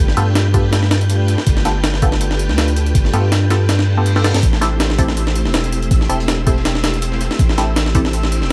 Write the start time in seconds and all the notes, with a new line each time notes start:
Already playing: B3 F4 G4 A4 G6
0.00 G1 A3 D4 F4 G4 B4
0.08 snare
0.17 G2 B3 F4 G4 A4, closed hi-hat
0.35 snare, closed hi-hat
0.54 A3 B3 D4 F4 G4 A4 B4, kick, closed hi-hat
0.73 snare, closed hi-hat
0.83 snare
0.91 A3 D4 F4 G4 B4, snare, closed hi-hat
1.01 A3 D4 F4 G4 B4, closed hi-hat
1.10 closed hi-hat
1.28 closed hi-hat
1.38 snare
1.47 G1 A3 D4 F4 G4 B4, kick, closed hi-hat
1.57 snare
1.65 B3 F4 G4 A4, snare, closed hi-hat
1.84 snare, closed hi-hat
1.94 snare
2.02 A3 B3 D4 F4 G4 A4 B4, kick, closed hi-hat
2.12 snare
2.21 closed hi-hat
2.31 snare
2.39 closed hi-hat
2.49 D2, snare
2.58 snare, closed hi-hat
2.68 closed hi-hat
2.76 closed hi-hat
2.86 closed hi-hat
2.95 G1 A3 D4 F4 G4 B4, kick, closed hi-hat
3.05 snare
3.13 G2 B3 F4 G4 A4, closed hi-hat
3.32 snare, closed hi-hat
3.50 A3 B3 D4 F4 G4 A4 B4, snare, closed hi-hat
3.69 snare, closed hi-hat, reverse cymbal
3.79 snare
3.87 A3 D4 F4 G4 B4
3.97 A3 B3 D4 F4 G4 A4 B4
4.06 closed hi-hat
4.16 B3 F4 G4 A4, snare
4.24 B3 F4 G4 A4, snare, closed hi-hat
4.34 G2, snare, closed hi-hat
4.43 A1 A3 C4 E4 G4 C5 E6, kick, closed hi-hat, shaker
4.53 snare
4.61 C4 E4 G4 A4, snare, closed hi-hat, shaker
4.80 snare, closed hi-hat, shaker
4.90 snare
4.98 A3 C4 E4 G4 A4 C5, kick, closed hi-hat, shaker
5.08 snare
5.17 closed hi-hat, shaker
5.27 snare
5.36 closed hi-hat, shaker
5.45 E1, snare
5.53 snare, closed hi-hat, shaker
5.64 snare, closed hi-hat
5.72 closed hi-hat, shaker
5.82 closed hi-hat
5.91 A1 A3 C4 E4 G4 C5, kick, closed hi-hat, shaker
6.01 snare
6.09 E1 C4 E4 G4 A4, closed hi-hat, shaker
6.20 closed hi-hat
6.28 snare, closed hi-hat, shaker
6.46 A3 C4 E4 G4 A4 C5, kick, closed hi-hat, shaker
6.56 snare
6.65 snare, closed hi-hat, shaker
6.75 snare
6.83 A3 C4 E4 G4 C5, snare, closed hi-hat, shaker
6.93 A3 C4 E4 G4 C5, snare, closed hi-hat
7.02 closed hi-hat, shaker
7.12 snare
7.20 snare, closed hi-hat, shaker
7.31 snare, shaker
7.39 A1 A3 C4 E4 G4 C5, kick, closed hi-hat, shaker
7.49 snare
7.58 C4 E4 G4 A4, snare, closed hi-hat, shaker
7.76 snare, closed hi-hat, shaker
7.86 snare
7.95 A3 C4 E4 G4 A4 C5, kick, closed hi-hat, shaker
8.05 snare
8.13 closed hi-hat, shaker
8.23 snare
8.32 closed hi-hat, shaker
8.42 E1, snare